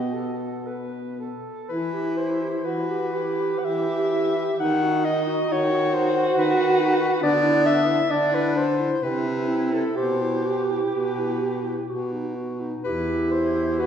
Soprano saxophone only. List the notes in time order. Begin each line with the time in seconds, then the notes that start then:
Already playing: D#5
1.69 B4
2.17 C5
2.64 B4
3.59 F#5
3.65 E5
4.59 F#5
5.04 D#5
5.52 C#5
5.95 C5
6.38 B4
7.23 D5
7.66 E5
8.11 D5
8.34 B4
8.57 C5
9.03 B4
9.74 A4
9.97 C5
10.92 B4
12.84 B4
13.31 C5
13.79 B4